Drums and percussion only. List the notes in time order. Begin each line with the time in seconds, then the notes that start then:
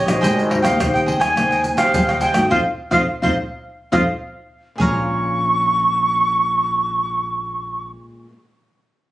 0.08 pandeiro, tamborim, shaker, surdo
0.24 pandeiro, shaker, surdo
0.39 pandeiro, shaker
0.51 pandeiro, tamborim, surdo
0.65 pandeiro, tamborim, shaker
0.80 pandeiro, tamborim, shaker, surdo
0.96 pandeiro, shaker
1.08 pandeiro, surdo
1.21 pandeiro, tamborim, shaker, surdo
1.37 pandeiro, tamborim, shaker, surdo
1.52 pandeiro, shaker
1.64 pandeiro, shaker
1.78 pandeiro, tamborim, shaker, surdo
1.94 pandeiro, shaker, surdo
2.09 pandeiro, tamborim, shaker
2.21 pandeiro, shaker
2.34 pandeiro, tamborim, shaker, surdo
2.50 surdo
2.92 surdo
3.23 surdo
3.93 surdo
4.80 surdo